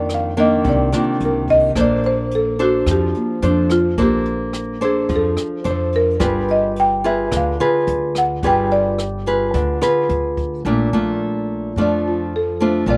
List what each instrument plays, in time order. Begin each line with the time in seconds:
Already playing: upright bass F2, nylon-string guitar F2 D#3 A#3 D4
0.09 cross-stick, closed hi-hat
0.14 marimba F5
0.37 nylon-string guitar D#3 A#3 D4, marimba D#5, closed hi-hat
0.64 upright bass C2, nylon-string guitar C3, kick, closed hi-hat
0.69 marimba D5
0.92 nylon-string guitar D#3 A#3 D4, marimba F4, cross-stick, closed hi-hat
1.20 upright bass C2, closed hi-hat
1.25 marimba A#4
1.48 marimba D#5, kick, closed hi-hat
1.75 upright bass A#1, nylon-string guitar A#3 D4 A4 C5, kick, cross-stick, closed hi-hat
1.81 marimba D5
2.03 marimba C5, closed hi-hat
2.31 closed hi-hat
2.35 marimba A4
2.59 nylon-string guitar D4 A4 C5, marimba F#4, closed hi-hat
2.86 upright bass F2, nylon-string guitar F3, kick, cross-stick, closed hi-hat
2.91 marimba G4
3.14 marimba A#3, closed hi-hat
3.42 upright bass F2, nylon-string guitar D4 A4 C5, marimba D4, closed hi-hat
3.70 marimba F4, cross-stick, closed hi-hat
3.98 upright bass A#1, nylon-string guitar A#3 D4 A4 C5, kick, closed hi-hat
4.02 marimba G4
4.25 closed hi-hat
4.53 cross-stick, closed hi-hat
4.81 nylon-string guitar D4 A4 C5, marimba G#4, closed hi-hat
5.09 upright bass F2, nylon-string guitar F3, kick, closed hi-hat
5.16 marimba A4
5.37 cross-stick, closed hi-hat
5.64 upright bass F2, nylon-string guitar D4 A4 C5, closed hi-hat
5.71 marimba C5
5.92 marimba A#4, closed hi-hat
6.20 upright bass G1, nylon-string guitar G3 F4 G#4 B4, kick, cross-stick, closed hi-hat
6.25 marimba B4
6.48 marimba D#5, closed hi-hat
6.76 marimba G5, closed hi-hat
7.04 nylon-string guitar F4 G#4 B4, marimba E5, closed hi-hat
7.32 upright bass D2, nylon-string guitar D3, kick, cross-stick, closed hi-hat
7.37 marimba F5
7.60 nylon-string guitar F4 G#4 B4, closed hi-hat
7.87 upright bass D2, closed hi-hat
8.15 marimba F#5, cross-stick, closed hi-hat
8.43 upright bass G1, nylon-string guitar G3 F4 G#4 B4, kick, closed hi-hat
8.47 marimba G5
8.71 marimba D5, closed hi-hat
8.98 cross-stick, closed hi-hat
9.26 nylon-string guitar F4 G#4 B4, closed hi-hat
9.54 upright bass D2, nylon-string guitar D3, kick, closed hi-hat
9.81 nylon-string guitar F4 G#4 B4, cross-stick, closed hi-hat
10.09 upright bass D2, closed hi-hat
10.37 kick, closed hi-hat
10.65 upright bass A#1, nylon-string guitar A#2 A3 D4 F4
10.93 upright bass A#1, nylon-string guitar A3 D4 F4
11.76 upright bass F2, nylon-string guitar F3 A3 D4 F4
11.82 marimba D5
12.08 marimba F4
12.36 marimba A4
12.60 nylon-string guitar A3 D4 F4, marimba C5
12.86 upright bass A#1, nylon-string guitar A#2 A3 D4 F4
12.90 marimba D5